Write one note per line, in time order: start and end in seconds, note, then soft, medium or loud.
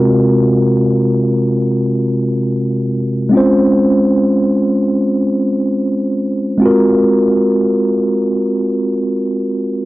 0.00 2.86 C3 medium
0.00 2.87 G#3 medium
0.00 2.91 C4 medium
0.00 2.88 F4 medium
0.00 2.89 F#4 medium
0.00 2.90 A#4 medium
3.29 6.55 G#3 medium
3.29 6.56 C4 medium
3.29 6.57 C#4 medium
3.35 6.58 F4 medium
3.35 6.59 C5 medium
6.58 9.84 G#3 medium
6.58 9.85 C4 medium
6.58 9.85 F4 medium
6.64 9.85 F#4 medium
6.64 9.85 A#4 medium